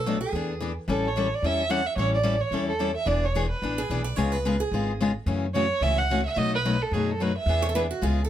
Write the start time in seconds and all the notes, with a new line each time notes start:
Already playing: B1 A4
0.06 B2 F#3 A3 D4 F#4
0.21 G#4
0.32 E2 E3 B3 D4 G#4
0.60 E3 B3 D4 G#4
0.88 A1 E3 G3 C#4 E4 A4
1.08 C#5
1.16 E3 G3 C#4 E4 A4
1.35 D5
1.42 E2 E3 G3 C#4 E4 A4 E5
1.69 E3 G3 C#4 E4 A4 F#5
1.87 E5
1.96 A1 E3 G3 C#4 E4 A4 C#5
2.14 D5
2.23 E3 G3 C#4 E4 A4
2.41 C#5
2.51 E2 E3 G3 C#4 E4 A4
2.69 A4
2.79 E3 G3 C#4 E4 A4
2.97 E5
3.06 E1 E3 B3 D4 G#4 D5
3.25 C#5
3.35 E3 B3 D4 G#4
3.51 B4
3.62 A1 E3 B3 D4 G#4
3.78 G#4
3.90 B1 E3 B3 D4 G#4
4.04 D5
4.16 C#2 C#3 G#3 B3 F4 G#4 C#5
4.32 B4
4.45 C#3 G#3 B3 F4 G#4
4.60 G#4
4.71 G#1 C#3 G#3 B3 F4 G#4
5.00 C#3 G#3 B3 F4 G#4
5.26 F#2 C#3 E3 A3 C#4 F#4
5.54 C#3 E3 A3 C#4 F#4 C#5
5.81 C#2 C#3 E3 A3 C#4 F#4 E5
5.98 F#5
6.10 C#3 E3 A3 C#4 F#4
6.26 E5
6.36 B1 B2 F#3 A3 D#4 F#4 D#5
6.55 B4
6.65 B2 F#3 A3 D#4 F#4
6.83 A4
6.91 F#2 B2 F#3 A3 D#4 F#4 G#4
7.06 G#4
7.11 A4
7.20 B2 F#3 A3 D#4 F#4 B4
7.38 E5
7.46 E2 E3 B3 D4 G#4
7.62 C#5
7.69 A4
7.75 E3 B3 D4 G#4 B4
7.91 F#4
8.02 C#2 C#3 G#3 B3 F4 G#4
8.24 A4